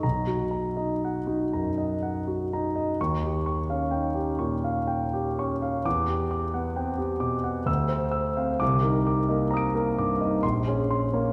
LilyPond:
<<
  \new Staff \with { instrumentName = "Grand piano" } { \time 3/4 \key b \phrygian \tempo 4 = 64 << { ais''8 r2 r8 | des'''8 r2 r8 | d'''8 r4. e'''8 r8 | d'''8 r8 <bes'' ees''' d''''>4 c'''8 r8 | } \\ { r16 fis'16 ais''16 dis''16 fis''16 fis'16 ais''16 dis''16 fis''16 fis'16 ais''16 dis''16 | r16 g'16 des'''16 f''16 g''16 g'16 des'''16 f''16 g''16 g'16 des'''16 f''16 | r16 g'16 d'''16 fis''16 g''16 g'16 d'''16 fis''16 r16 c''16 e'''16 f''16 | r16 bes'16 d'''16 ees''8 bes'16 d'''16 ees''16 r16 aes'16 c'''16 des''16 | } >> }
  \new Staff \with { instrumentName = "Grand piano" } { \time 3/4 \key b \phrygian b,,8. dis'8 dis'16 fis,8 r8 dis'8 | ees,8. des'16 ees'16 des'16 bes,8 r8 des'8 | e,8. b16 c'16 b16 b,8 d,8. c'16 | c,16 ees'8 bes16 c'16 bes16 g,16 ees'16 bes,,16 des'8 bes16 | }
>>